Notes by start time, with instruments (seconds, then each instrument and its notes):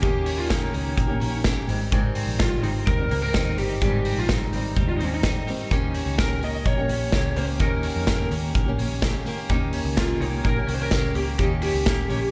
Already playing: clean electric guitar A#3 C#4 G4
0.02 picked electric bass D#2, steel-string acoustic guitar D#3 A#3 C#4 G4, lead electric guitar G4, kick, closed hi-hat
0.26 clean electric guitar C#4, open hi-hat
0.38 lead electric guitar F4
0.49 clean electric guitar A#3, lead electric guitar D#4, kick, snare, closed hi-hat
0.73 picked electric bass C#2, steel-string acoustic guitar D#3 A#3 C#4 G4, open hi-hat
0.97 picked electric bass A#1, clean electric guitar A#3, kick, closed hi-hat
1.07 steel-string acoustic guitar A#3 C#4 G4
1.20 picked electric bass A#1, steel-string acoustic guitar D#3 A#3 C#4 G4, open hi-hat
1.43 steel-string acoustic guitar D#3 A#3 C#4 G4, kick, snare, closed hi-hat
1.67 picked electric bass G#1, clean electric guitar G#2, steel-string acoustic guitar D#3 G3 C4 D#4, open hi-hat
1.92 steel-string acoustic guitar G#2 D#3 G3 C4 D#4, kick, closed hi-hat
2.15 clean electric guitar C4, open hi-hat
2.27 picked electric bass A#1
2.39 clean electric guitar G3, lead electric guitar F4, kick, snare, closed hi-hat
2.62 picked electric bass G#1, steel-string acoustic guitar D#3 G3 C4 D#4, lead electric guitar D#4, open hi-hat
2.87 picked electric bass D#2, clean electric guitar G3, lead electric guitar A#4, kick, closed hi-hat
2.97 steel-string acoustic guitar G3 C4 D#4
3.09 picked electric bass C#2, steel-string acoustic guitar D#3 G3 C4 D#4, clean electric guitar A#3, open hi-hat
3.23 clean electric guitar C4, lead electric guitar A#4
3.32 picked electric bass D#2, steel-string acoustic guitar D#3 G3 C4 D#4, kick, snare, closed hi-hat
3.57 picked electric bass G1, steel-string acoustic guitar D#3 G3 C4 D#4, lead electric guitar G4, open hi-hat
3.81 picked electric bass G#1, steel-string acoustic guitar G#2 D#3 G3 C4 D#4, lead electric guitar G4, kick, closed hi-hat
4.05 clean electric guitar C4, open hi-hat
4.17 picked electric bass A#1, lead electric guitar F4
4.29 clean electric guitar G3, lead electric guitar D#4, kick, snare, closed hi-hat
4.52 picked electric bass G#1, steel-string acoustic guitar D#3 G3 C4 D#4, open hi-hat
4.76 picked electric bass D#2, clean electric guitar G3, kick, closed hi-hat
4.88 steel-string acoustic guitar G3 C4 D#4, lead electric guitar F4
4.97 picked electric bass D#2, steel-string acoustic guitar D#3 G3, lead electric guitar D#4, open hi-hat
5.02 steel-string acoustic guitar C4 D#4
5.06 lead electric guitar C#4
5.15 lead electric guitar D#4
5.23 steel-string acoustic guitar D#3 G3 C4 D#4, kick, snare, closed hi-hat
5.47 steel-string acoustic guitar D#3 G3 C4 D#4, open hi-hat
5.71 picked electric bass D#2, steel-string acoustic guitar D#3 A#3 C#4 G4, kick, closed hi-hat
5.95 clean electric guitar C#4, open hi-hat
6.06 picked electric bass C#2
6.18 clean electric guitar A#3, lead electric guitar A#4, kick, snare, closed hi-hat
6.41 steel-string acoustic guitar D#3 A#3 C#4 G4, lead electric guitar D#5, open hi-hat
6.66 picked electric bass A#1, clean electric guitar A#3, lead electric guitar C#5, kick, closed hi-hat
6.77 steel-string acoustic guitar A#3 C#4 G4
6.88 picked electric bass A#1, steel-string acoustic guitar D#3 A#3 C#4 G4, open hi-hat
7.11 picked electric bass C#2, steel-string acoustic guitar D#3 A#3 C#4 G4, kick, snare
7.36 picked electric bass C#2, steel-string acoustic guitar D#3 A#3 C#4 G4, lead electric guitar C5, open hi-hat
7.60 picked electric bass D#2, steel-string acoustic guitar D#3 A#3 C#4 G4, lead electric guitar A#4, kick, closed hi-hat
7.83 clean electric guitar C#4, open hi-hat
7.96 picked electric bass F2
8.07 clean electric guitar A#3, kick, snare, closed hi-hat
8.31 picked electric bass D#2, steel-string acoustic guitar D#3 A#3 C#4 G4, open hi-hat
8.55 picked electric bass A#1, clean electric guitar A#3, kick, closed hi-hat
8.66 steel-string acoustic guitar A#3 C#4 G4
8.79 picked electric bass A#1, steel-string acoustic guitar D#3 A#3 C#4 G4, open hi-hat
9.01 steel-string acoustic guitar D#3 A#3 C#4 G4, kick, snare, closed hi-hat
9.26 steel-string acoustic guitar D#3 A#3 C#4 G4, open hi-hat
9.49 picked electric bass D#2, steel-string acoustic guitar D#3 A#3 C#4 G4, kick, closed hi-hat
9.73 clean electric guitar C#4, open hi-hat
9.85 picked electric bass C#2
9.97 clean electric guitar A#3, lead electric guitar F4, kick, snare, closed hi-hat
10.21 picked electric bass C2, steel-string acoustic guitar D#3 A#3 C#4 G4, lead electric guitar D#4, open hi-hat
10.44 picked electric bass A#1, clean electric guitar A#3, lead electric guitar A#4, kick, closed hi-hat
10.56 steel-string acoustic guitar A#3 C#4 G4
10.68 picked electric bass C2, steel-string acoustic guitar D#3 A#3 C#4 G4, open hi-hat
10.74 lead electric guitar C5
10.82 lead electric guitar A#4
10.91 picked electric bass C#2, steel-string acoustic guitar D#3 A#3 C#4 G4, kick, snare, closed hi-hat
11.14 picked electric bass C#2, steel-string acoustic guitar D#3 A#3 C#4 G4, lead electric guitar G4, open hi-hat
11.38 picked electric bass D#2, steel-string acoustic guitar D#3 A#3 C#4 G4, lead electric guitar G4, kick, closed hi-hat
11.62 clean electric guitar C#4, lead electric guitar G4, open hi-hat
11.74 picked electric bass C#2
11.86 clean electric guitar A#3, kick, snare, closed hi-hat
12.08 picked electric bass A#1, steel-string acoustic guitar D#3 A#3 C#4 G4, open hi-hat